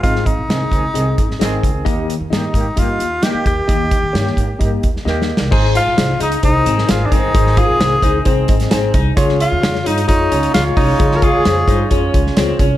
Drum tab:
CC |------------------------------------------------|------------------------------------------------|------------------------------------------------|x-----------------------------------------------|
HH |x-----x-----x-----x-----x-----x-----x-----x-----|x-----x-----x-----x-----x-----x-----x-----x-----|x-----x-----x-----x-----x-----x-----------------|------x-----x-----x--x--x-----x-----x-----x-----|
SD |---o--------o--------------------o--o-----------|------------o-----------------------o-----------|------------o--o-----------------o--o---o---o---|------------o--------------------o--o-----------|
BD |o-----o-----------o-----------o-----------o-----|o-----------------o-----o-----------------o-----|o-----o-----------o-----o-----o-----------------|o-----------------------o-----------------o-----|

CC |------------------------------------------------|------------------------------------------------|------------------------------------------------|
HH |x-----x-----x-----x-----x-----x--x--x-----x-----|x-----x-----x-----x--x--x-----x--x--x-----o-----|x-----x-----x-----x-----x-----x-----x-----x-----|
SD |---o--------o--------------------o--o-----------|---o--------o--o--------------------o-----------|---o--------o--------------------o--o-----------|
BD |o-----o-----------o-----o-----o-----------o-----|o-----------------------o-----------------o-----|o-----o-----------o-----o-----o-----------o-----|